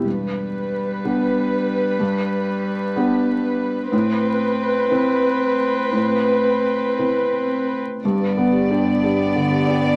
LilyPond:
<<
  \new Staff \with { instrumentName = "Vibraphone" } { \time 6/8 \key g \major \tempo 4. = 61 r2. | r2. | r2. | r2. |
g'16 b'16 b'16 g'16 g''16 d''16 g'16 g''16 d''16 g'16 g''16 d''16 | }
  \new Staff \with { instrumentName = "Violin section" } { \time 6/8 \key g \major b'2.~ | b'2. | b'2.~ | b'2~ b'8 r8 |
d''2. | }
  \new Staff \with { instrumentName = "Felt piano" } { \time 6/8 \key g \major g,4. <b d' g'>4. | g,4. <b d' g'>4. | a,4. <c' e' b'>4. | a,4. <c' e' b'>4. |
g,8 b8 <d' g'>8 <d' g'>8 d8 <d' g'>8 | }
  \new Staff \with { instrumentName = "Cello" } { \time 6/8 \key g \major g2.~ | g2. | c'2.~ | c'2~ c'8 r8 |
b2. | }
  \new Staff \with { instrumentName = "Double bass" } { \clef bass \time 6/8 \key g \major r2. | r2. | r2. | r2. |
g,,2. | }
>>